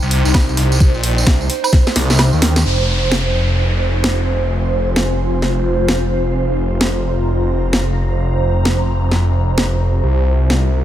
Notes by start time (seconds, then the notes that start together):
Already playing: D#4 C5 G5
0.02 C2, tambourine
0.11 closed hi-hat, open hi-hat
0.25 C2, snare, tambourine
0.34 kick, snare, closed hi-hat, tambourine, high woodblock
0.49 C2, tambourine
0.57 C2, snare, closed hi-hat, open hi-hat
0.72 tambourine
0.80 kick, closed hi-hat, tambourine
0.94 A#1, tambourine
1.03 closed hi-hat, open hi-hat
1.18 tambourine
1.27 C2, kick, snare, closed hi-hat
1.41 tambourine
1.50 snare, closed hi-hat, open hi-hat
1.64 tambourine, high woodblock
1.73 kick, snare, closed hi-hat
1.87 snare, closed hi-hat, tambourine
1.96 C2, snare, closed hi-hat, open hi-hat
2.10 snare, tambourine
2.19 snare, closed hi-hat, tambourine, high woodblock
2.33 D#2, snare, tambourine
2.42 snare, closed hi-hat, open hi-hat
2.56 snare, tambourine
2.65 F1 F4, downlifter
2.83 G#5
3.12 snare
4.04 snare
4.96 snare
5.42 snare
5.88 snare
6.10 A#5
6.81 snare
7.73 snare
8.65 snare
9.11 snare
9.58 snare
10.03 C2 D#4
10.13 C5
10.50 snare